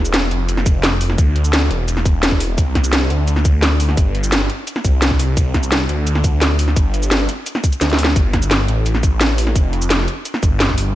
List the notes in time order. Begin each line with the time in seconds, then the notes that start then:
Already playing: E1
0.05 cabasa
0.14 snare, closed hi-hat, cabasa
0.31 F1, closed hi-hat
0.49 closed hi-hat, cabasa
0.57 snare
0.66 kick, closed hi-hat, cabasa
0.84 snare, closed hi-hat, cabasa
1.01 open hi-hat, cabasa
1.10 snare
1.18 D2, kick, closed hi-hat, cabasa
1.36 closed hi-hat
1.44 cabasa
1.53 snare, closed hi-hat, cabasa
1.62 snare
1.71 E1, closed hi-hat
1.88 closed hi-hat, cabasa
1.97 snare
2.06 kick, closed hi-hat, cabasa
2.23 snare, closed hi-hat, cabasa
2.32 kick, snare
2.40 open hi-hat, cabasa
2.58 C2, kick, closed hi-hat, cabasa
2.75 kick, snare, closed hi-hat
2.84 cabasa
2.93 snare, closed hi-hat, cabasa
3.10 D2, closed hi-hat
3.28 closed hi-hat, cabasa
3.36 snare
3.45 kick, closed hi-hat, cabasa
3.63 snare, closed hi-hat, cabasa
3.80 open hi-hat, cabasa
3.89 snare
3.97 G1, kick, closed hi-hat, cabasa
4.15 closed hi-hat
4.24 cabasa
4.32 snare, closed hi-hat, cabasa
4.41 snare
4.50 closed hi-hat
4.67 closed hi-hat, cabasa
4.76 snare
4.85 C2, kick, closed hi-hat, cabasa
5.02 snare, closed hi-hat, cabasa
5.11 kick, snare
5.20 open hi-hat, cabasa
5.37 C2, kick, closed hi-hat, cabasa
5.54 kick, snare, closed hi-hat
5.63 cabasa
5.72 snare, closed hi-hat, cabasa
5.89 D2, closed hi-hat
6.07 closed hi-hat, cabasa
6.15 snare
6.24 kick, closed hi-hat, cabasa
6.42 snare, closed hi-hat, cabasa
6.59 open hi-hat, cabasa
6.68 snare
6.76 G1, kick, closed hi-hat, cabasa
6.94 closed hi-hat, cabasa
7.03 cabasa
7.11 snare, closed hi-hat, cabasa
7.20 snare
7.29 closed hi-hat, cabasa
7.46 closed hi-hat, cabasa
7.55 snare
7.64 kick, closed hi-hat, cabasa
7.72 closed hi-hat, cabasa
7.81 D2, snare, closed hi-hat, cabasa
7.90 snare, closed hi-hat
7.99 open hi-hat, cabasa
8.04 snare
8.16 G1, kick, closed hi-hat, cabasa
8.33 kick, snare, closed hi-hat
8.42 cabasa
8.51 snare, closed hi-hat, cabasa
8.68 A1, closed hi-hat
8.86 closed hi-hat, cabasa
8.95 snare
9.03 kick, closed hi-hat, cabasa
9.21 snare, closed hi-hat, cabasa
9.38 open hi-hat, cabasa
9.47 snare
9.55 F1, kick, closed hi-hat, cabasa
9.73 closed hi-hat
9.82 cabasa
9.90 snare, closed hi-hat, cabasa
9.99 snare
10.08 closed hi-hat
10.25 closed hi-hat, cabasa
10.34 snare
10.43 G1, kick, closed hi-hat, cabasa
10.60 snare, closed hi-hat, cabasa
10.69 kick, snare
10.78 open hi-hat, cabasa